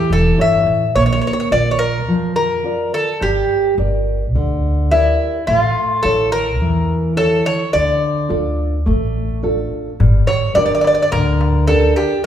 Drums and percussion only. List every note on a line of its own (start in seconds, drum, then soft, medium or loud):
10.00 darbuka dum medium
10.29 darbuka tek medium
10.56 darbuka tek medium
10.84 darbuka tek medium
11.13 darbuka tek medium
11.13 darbuka dum medium
11.41 darbuka tek medium
11.69 darbuka tek medium
11.97 darbuka tek medium